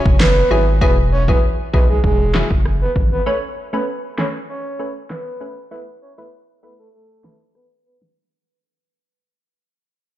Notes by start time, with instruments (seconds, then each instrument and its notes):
0.06 sub bass F#1, kick
0.20 soft synth lead B4, cross-stick, snare, clap
0.51 sub bass G#1, synth stab F#3 E4 G#4
0.81 sub bass E1, synth stab F#3 E4 G#4, soft synth lead B4, kick
1.12 soft synth lead C#5
1.28 synth stab F#3 E4 G#4, soft synth lead B4, kick
1.73 sub bass B1, synth stab F#3 E4 G#4, soft synth lead B4, kick
1.90 soft synth lead G#4
2.04 sub bass E1, soft synth lead G#4, kick
2.34 synth stab F#3 E4 G#4, snare, clap
2.51 sub bass F#1, kick
2.65 cross-stick
2.82 soft synth lead B4
2.96 sub bass G#1, kick
3.12 soft synth lead B4
3.26 synth stab A3 C#4 B4, soft synth lead C#5
3.73 synth stab A3 C#4 B4, soft synth lead B4
4.18 synth stab A3 C#4 B4, soft synth lead C#5, snare, clap
4.49 soft synth lead C#5
4.79 synth stab A3 C#4 B4
5.10 soft synth lead B4, cross-stick, snare, clap
5.40 synth stab A3 C#4 B4
5.71 synth stab A3 E4 B4, soft synth lead B4
6.02 soft synth lead C#5
6.18 synth stab A3 E4 B4, soft synth lead B4
6.63 synth stab A3 E4 B4, soft synth lead B4
6.79 soft synth lead A4
6.93 soft synth lead A4
7.24 synth stab A3 E4 B4, snare, clap
7.55 soft synth lead B4, cross-stick
7.85 soft synth lead B4
8.02 snare